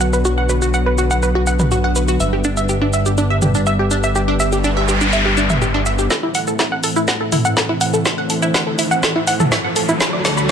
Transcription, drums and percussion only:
0.01 shaker medium
0.13 shaker soft
0.25 shaker soft
0.49 shaker medium
0.62 shaker medium
0.74 shaker soft
0.98 shaker medium
1.11 shaker soft
1.23 shaker medium
1.47 shaker medium
1.60 mid tom medium
1.60 shaker soft
1.71 shaker soft
1.96 shaker medium
2.08 shaker medium
2.20 shaker medium
2.44 shaker medium
2.57 shaker soft
2.69 shaker soft
2.93 shaker medium
3.06 shaker soft
3.18 shaker medium
3.42 mid tom medium
3.42 shaker medium
3.55 shaker medium
3.66 shaker soft
3.91 shaker medium
4.04 shaker medium
4.15 shaker medium
4.40 shaker medium
4.52 shaker medium
4.64 shaker soft
4.89 shaker medium
5.01 shaker medium
5.13 shaker medium
5.37 shaker medium
5.50 mid tom medium
5.50 shaker medium
5.62 shaker medium
5.86 shaker medium
5.99 shaker medium
6.10 kick loud
6.10 snare soft
6.10 shaker medium
6.35 open hi-hat loud
6.35 shaker medium
6.47 shaker medium
6.59 kick loud
6.59 snare soft
6.59 shaker medium
6.84 open hi-hat loud
6.84 shaker medium
6.96 shaker medium
7.08 kick loud
7.08 snare medium
7.08 shaker medium
7.32 mid tom medium
7.32 open hi-hat loud
7.32 shaker medium
7.45 shaker medium
7.57 kick loud
7.57 snare medium
7.57 shaker medium
7.81 open hi-hat loud
7.81 shaker medium
7.94 shaker medium
8.05 kick loud
8.05 snare medium
8.05 shaker medium
8.30 open hi-hat loud
8.30 shaker medium
8.42 shaker medium
8.54 kick loud
8.54 snare medium
8.54 shaker medium
8.79 open hi-hat loud
8.79 shaker medium
8.91 shaker medium
9.03 kick loud
9.03 snare medium
9.03 shaker medium
9.27 open hi-hat loud
9.27 shaker medium
9.40 mid tom medium
9.40 shaker medium
9.52 kick loud
9.52 snare medium
9.52 shaker medium
9.76 open hi-hat loud
9.76 shaker medium
9.89 shaker medium
10.00 kick loud
10.00 snare medium
10.00 shaker medium
10.25 snare medium
10.25 open hi-hat loud
10.25 shaker medium
10.37 shaker medium

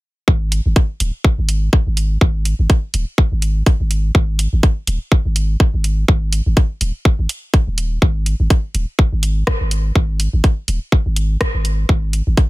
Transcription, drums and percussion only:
0.28 kick loud
0.52 closed hi-hat medium
0.76 kick loud
0.76 closed hi-hat soft
1.00 closed hi-hat medium
1.24 kick loud
1.49 closed hi-hat medium
1.73 kick loud
1.97 closed hi-hat medium
2.21 kick loud
2.45 closed hi-hat medium
2.70 kick loud
2.70 closed hi-hat soft
2.94 closed hi-hat medium
3.18 kick loud
3.42 closed hi-hat medium
3.66 kick loud
3.66 closed hi-hat soft
3.91 closed hi-hat medium
4.15 kick loud
4.39 closed hi-hat medium
4.63 kick loud
4.63 closed hi-hat soft
4.87 closed hi-hat loud
5.12 kick loud
5.36 closed hi-hat medium
5.60 kick loud
5.84 closed hi-hat medium
6.08 kick loud
6.33 closed hi-hat medium
6.57 kick loud
6.57 closed hi-hat soft
6.81 closed hi-hat medium
7.05 kick loud
7.29 closed hi-hat medium
7.54 kick loud
7.54 closed hi-hat soft
7.78 closed hi-hat medium
8.02 kick loud
8.26 closed hi-hat medium
8.50 kick loud
8.50 closed hi-hat soft
8.75 closed hi-hat medium
8.99 kick loud
9.23 closed hi-hat medium
9.47 kick loud
9.47 cross-stick medium
9.71 closed hi-hat medium
9.95 kick loud
10.20 closed hi-hat medium
10.44 kick loud
10.44 closed hi-hat soft
10.68 closed hi-hat medium
10.92 kick loud
11.16 closed hi-hat medium
11.41 kick loud
11.41 cross-stick medium
11.41 closed hi-hat soft
11.65 closed hi-hat medium
11.89 kick loud
12.13 closed hi-hat medium
12.37 kick loud
12.37 closed hi-hat soft

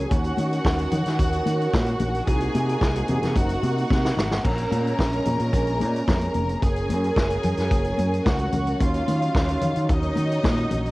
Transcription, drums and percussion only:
0.11 kick loud
0.11 closed hi-hat medium
0.11 muted conga soft
0.24 closed hi-hat soft
0.37 closed hi-hat medium
0.37 muted conga soft
0.37 high conga medium
0.53 closed hi-hat soft
0.65 kick loud
0.65 snare loud
0.65 muted conga soft
0.79 closed hi-hat medium
0.91 closed hi-hat medium
0.91 muted conga soft
0.91 low conga medium
1.06 snare soft
1.06 closed hi-hat medium
1.19 kick loud
1.19 closed hi-hat medium
1.33 closed hi-hat soft
1.46 closed hi-hat medium
1.46 muted conga soft
1.46 high conga medium
1.61 closed hi-hat soft
1.74 kick loud
1.74 snare loud
1.74 high conga medium
1.87 closed hi-hat soft
2.00 closed hi-hat medium
2.00 muted conga soft
2.00 high conga medium
2.00 low conga medium
2.15 closed hi-hat soft
2.27 kick loud
2.27 closed hi-hat medium
2.41 closed hi-hat soft
2.55 closed hi-hat medium
2.55 muted conga soft
2.55 high conga medium
2.69 closed hi-hat soft
2.81 kick loud
2.81 snare loud
2.81 muted conga soft
2.96 closed hi-hat medium
3.08 closed hi-hat medium
3.08 muted conga soft
3.08 low conga medium
3.23 snare soft
3.23 closed hi-hat medium
3.23 low conga medium
3.36 kick loud
3.36 closed hi-hat medium
3.49 closed hi-hat soft
3.63 closed hi-hat medium
3.63 high conga medium
3.78 closed hi-hat soft
3.90 kick loud
3.90 snare medium
3.90 muted conga soft
3.90 high conga medium
4.05 snare medium
4.17 snare medium
4.17 muted conga soft
4.17 high conga medium
4.17 low conga medium
4.31 snare medium
4.45 kick loud
4.45 crash medium
4.45 muted conga soft
4.58 closed hi-hat soft
4.72 closed hi-hat medium
4.72 high conga medium
4.87 closed hi-hat soft
4.99 kick medium
4.99 snare medium
4.99 muted conga soft
5.13 closed hi-hat soft
5.25 closed hi-hat medium
5.25 low conga medium
5.40 closed hi-hat medium
5.53 kick loud
5.53 closed hi-hat medium
5.53 muted conga soft
5.67 closed hi-hat soft
5.80 closed hi-hat medium
5.80 high conga medium
5.96 closed hi-hat soft
6.08 kick loud
6.08 snare medium
6.08 high conga medium
6.21 closed hi-hat soft
6.34 closed hi-hat medium
6.34 high conga medium
6.34 low conga medium
6.49 closed hi-hat soft
6.62 kick loud
6.62 closed hi-hat medium
6.76 closed hi-hat soft
6.90 closed hi-hat medium
6.90 high conga medium
7.04 closed hi-hat soft
7.16 kick loud
7.16 snare loud
7.16 muted conga soft
7.30 closed hi-hat soft
7.43 closed hi-hat medium
7.43 low conga medium
7.57 snare soft
7.57 closed hi-hat medium
7.71 kick loud
7.71 closed hi-hat medium
7.71 muted conga soft
7.84 closed hi-hat soft
7.98 closed hi-hat medium
7.98 muted conga soft
7.98 high conga medium
8.14 closed hi-hat soft
8.26 kick loud
8.26 snare loud
8.26 muted conga soft
8.26 high conga medium
8.39 closed hi-hat soft
8.52 closed hi-hat medium
8.52 muted conga soft
8.52 high conga medium
8.52 low conga medium
8.67 closed hi-hat soft
8.80 kick loud
8.80 closed hi-hat medium
8.94 closed hi-hat soft
9.08 closed hi-hat medium
9.08 high conga medium
9.22 closed hi-hat soft
9.35 kick loud
9.35 snare loud
9.35 muted conga soft
9.49 closed hi-hat medium
9.61 closed hi-hat medium
9.61 low conga medium
9.76 closed hi-hat medium
9.89 kick loud
9.89 closed hi-hat medium
9.89 muted conga soft
10.03 closed hi-hat soft
10.15 closed hi-hat medium
10.15 high conga medium
10.32 closed hi-hat soft
10.44 kick loud
10.44 snare loud
10.44 muted conga soft
10.44 high conga medium
10.57 closed hi-hat soft
10.71 closed hi-hat medium
10.71 high conga medium
10.71 low conga medium
10.85 closed hi-hat soft

